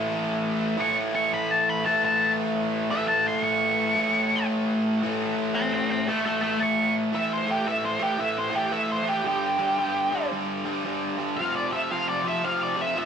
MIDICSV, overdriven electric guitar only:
0, 0, Header, 1, 2, 480
1, 0, Start_track
1, 0, Tempo, 529568
1, 707, Time_signature, 4, 2, 24, 8
1, 11830, End_track
2, 0, Start_track
2, 0, Title_t, "Overdriven electric guitar"
2, 0, Program_c, 0, 29
2, 0, Note_on_c, 0, 45, 71
2, 0, Note_on_c, 0, 52, 87
2, 0, Note_on_c, 0, 57, 90
2, 696, Note_off_c, 0, 45, 0
2, 699, Note_off_c, 0, 52, 0
2, 699, Note_on_c, 0, 45, 87
2, 702, Note_on_c, 0, 52, 85
2, 706, Note_off_c, 0, 57, 0
2, 710, Note_on_c, 0, 57, 100
2, 1670, Note_off_c, 0, 45, 0
2, 1674, Note_on_c, 0, 45, 72
2, 1682, Note_off_c, 0, 52, 0
2, 1686, Note_on_c, 0, 52, 78
2, 1695, Note_off_c, 0, 57, 0
2, 1698, Note_on_c, 0, 57, 90
2, 2632, Note_off_c, 0, 45, 0
2, 2635, Note_on_c, 0, 45, 92
2, 2642, Note_off_c, 0, 52, 0
2, 2645, Note_on_c, 0, 52, 97
2, 2654, Note_off_c, 0, 57, 0
2, 2658, Note_on_c, 0, 57, 108
2, 3582, Note_off_c, 0, 45, 0
2, 3586, Note_on_c, 0, 45, 79
2, 3593, Note_off_c, 0, 52, 0
2, 3596, Note_on_c, 0, 52, 74
2, 3603, Note_off_c, 0, 57, 0
2, 3606, Note_on_c, 0, 57, 82
2, 4549, Note_off_c, 0, 45, 0
2, 4552, Note_on_c, 0, 45, 85
2, 4554, Note_off_c, 0, 52, 0
2, 4558, Note_on_c, 0, 52, 100
2, 4565, Note_off_c, 0, 57, 0
2, 4569, Note_on_c, 0, 57, 104
2, 5495, Note_off_c, 0, 45, 0
2, 5500, Note_off_c, 0, 52, 0
2, 5506, Note_off_c, 0, 57, 0
2, 5506, Note_on_c, 0, 45, 74
2, 5516, Note_on_c, 0, 52, 73
2, 5519, Note_on_c, 0, 57, 87
2, 6450, Note_off_c, 0, 52, 0
2, 6453, Note_off_c, 0, 57, 0
2, 6454, Note_off_c, 0, 45, 0
2, 6461, Note_on_c, 0, 52, 82
2, 6463, Note_on_c, 0, 45, 77
2, 6464, Note_on_c, 0, 57, 89
2, 6754, Note_off_c, 0, 45, 0
2, 6759, Note_off_c, 0, 57, 0
2, 6761, Note_off_c, 0, 52, 0
2, 6765, Note_on_c, 0, 45, 75
2, 6770, Note_on_c, 0, 57, 80
2, 6772, Note_on_c, 0, 52, 70
2, 6935, Note_off_c, 0, 45, 0
2, 6935, Note_off_c, 0, 52, 0
2, 6941, Note_off_c, 0, 57, 0
2, 6946, Note_on_c, 0, 45, 74
2, 6946, Note_on_c, 0, 52, 87
2, 6952, Note_on_c, 0, 57, 95
2, 7231, Note_off_c, 0, 45, 0
2, 7235, Note_off_c, 0, 52, 0
2, 7240, Note_off_c, 0, 57, 0
2, 7242, Note_on_c, 0, 45, 77
2, 7246, Note_on_c, 0, 52, 76
2, 7251, Note_on_c, 0, 57, 75
2, 7399, Note_off_c, 0, 45, 0
2, 7401, Note_off_c, 0, 57, 0
2, 7402, Note_off_c, 0, 52, 0
2, 7410, Note_on_c, 0, 45, 81
2, 7412, Note_on_c, 0, 57, 88
2, 7413, Note_on_c, 0, 52, 81
2, 7693, Note_off_c, 0, 45, 0
2, 7693, Note_off_c, 0, 52, 0
2, 7697, Note_off_c, 0, 57, 0
2, 7704, Note_on_c, 0, 45, 75
2, 7704, Note_on_c, 0, 52, 87
2, 7708, Note_on_c, 0, 57, 84
2, 7874, Note_off_c, 0, 45, 0
2, 7885, Note_off_c, 0, 57, 0
2, 7885, Note_on_c, 0, 45, 89
2, 7886, Note_off_c, 0, 52, 0
2, 7896, Note_on_c, 0, 57, 95
2, 7897, Note_on_c, 0, 52, 88
2, 8179, Note_off_c, 0, 45, 0
2, 8183, Note_off_c, 0, 52, 0
2, 8186, Note_off_c, 0, 57, 0
2, 8190, Note_on_c, 0, 45, 81
2, 8194, Note_on_c, 0, 52, 73
2, 8197, Note_on_c, 0, 57, 79
2, 8365, Note_off_c, 0, 45, 0
2, 8367, Note_off_c, 0, 52, 0
2, 8368, Note_off_c, 0, 57, 0
2, 8370, Note_on_c, 0, 43, 88
2, 8371, Note_on_c, 0, 50, 90
2, 8378, Note_on_c, 0, 55, 102
2, 8671, Note_off_c, 0, 43, 0
2, 8678, Note_off_c, 0, 50, 0
2, 8681, Note_off_c, 0, 55, 0
2, 8681, Note_on_c, 0, 43, 70
2, 8689, Note_on_c, 0, 50, 82
2, 8692, Note_on_c, 0, 55, 78
2, 8856, Note_off_c, 0, 43, 0
2, 8861, Note_off_c, 0, 55, 0
2, 8862, Note_off_c, 0, 50, 0
2, 8867, Note_on_c, 0, 43, 89
2, 8872, Note_on_c, 0, 55, 92
2, 8873, Note_on_c, 0, 50, 84
2, 9156, Note_off_c, 0, 43, 0
2, 9161, Note_off_c, 0, 50, 0
2, 9163, Note_off_c, 0, 55, 0
2, 9167, Note_on_c, 0, 43, 73
2, 9172, Note_on_c, 0, 50, 84
2, 9174, Note_on_c, 0, 55, 87
2, 9338, Note_off_c, 0, 43, 0
2, 9346, Note_off_c, 0, 50, 0
2, 9347, Note_off_c, 0, 55, 0
2, 9349, Note_on_c, 0, 43, 86
2, 9357, Note_on_c, 0, 50, 88
2, 9358, Note_on_c, 0, 55, 91
2, 9645, Note_off_c, 0, 55, 0
2, 9646, Note_off_c, 0, 43, 0
2, 9648, Note_off_c, 0, 50, 0
2, 9656, Note_on_c, 0, 55, 86
2, 9657, Note_on_c, 0, 43, 74
2, 9659, Note_on_c, 0, 50, 73
2, 9820, Note_off_c, 0, 43, 0
2, 9820, Note_off_c, 0, 50, 0
2, 9825, Note_off_c, 0, 55, 0
2, 9830, Note_on_c, 0, 50, 92
2, 9831, Note_on_c, 0, 43, 85
2, 9835, Note_on_c, 0, 55, 107
2, 10112, Note_off_c, 0, 43, 0
2, 10123, Note_off_c, 0, 50, 0
2, 10123, Note_on_c, 0, 43, 78
2, 10126, Note_off_c, 0, 55, 0
2, 10134, Note_on_c, 0, 50, 78
2, 10137, Note_on_c, 0, 55, 83
2, 10291, Note_off_c, 0, 43, 0
2, 10297, Note_off_c, 0, 50, 0
2, 10299, Note_off_c, 0, 55, 0
2, 10312, Note_on_c, 0, 41, 85
2, 10319, Note_on_c, 0, 48, 88
2, 10325, Note_on_c, 0, 53, 96
2, 10598, Note_off_c, 0, 41, 0
2, 10607, Note_off_c, 0, 48, 0
2, 10609, Note_on_c, 0, 41, 77
2, 10611, Note_off_c, 0, 53, 0
2, 10617, Note_on_c, 0, 48, 89
2, 10622, Note_on_c, 0, 53, 84
2, 10775, Note_off_c, 0, 41, 0
2, 10783, Note_off_c, 0, 48, 0
2, 10786, Note_on_c, 0, 41, 82
2, 10789, Note_off_c, 0, 53, 0
2, 10794, Note_on_c, 0, 48, 94
2, 10800, Note_on_c, 0, 53, 96
2, 11081, Note_off_c, 0, 41, 0
2, 11085, Note_off_c, 0, 48, 0
2, 11086, Note_off_c, 0, 53, 0
2, 11092, Note_on_c, 0, 41, 71
2, 11096, Note_on_c, 0, 48, 76
2, 11097, Note_on_c, 0, 53, 88
2, 11258, Note_off_c, 0, 48, 0
2, 11258, Note_off_c, 0, 53, 0
2, 11260, Note_off_c, 0, 41, 0
2, 11269, Note_on_c, 0, 48, 81
2, 11269, Note_on_c, 0, 53, 92
2, 11270, Note_on_c, 0, 41, 88
2, 11552, Note_off_c, 0, 41, 0
2, 11553, Note_off_c, 0, 48, 0
2, 11558, Note_off_c, 0, 53, 0
2, 11563, Note_on_c, 0, 41, 77
2, 11564, Note_on_c, 0, 48, 85
2, 11569, Note_on_c, 0, 53, 90
2, 11726, Note_off_c, 0, 41, 0
2, 11729, Note_off_c, 0, 48, 0
2, 11733, Note_off_c, 0, 53, 0
2, 11737, Note_on_c, 0, 41, 87
2, 11740, Note_on_c, 0, 48, 93
2, 11744, Note_on_c, 0, 53, 97
2, 11830, Note_off_c, 0, 41, 0
2, 11830, Note_off_c, 0, 48, 0
2, 11830, Note_off_c, 0, 53, 0
2, 11830, End_track
0, 0, End_of_file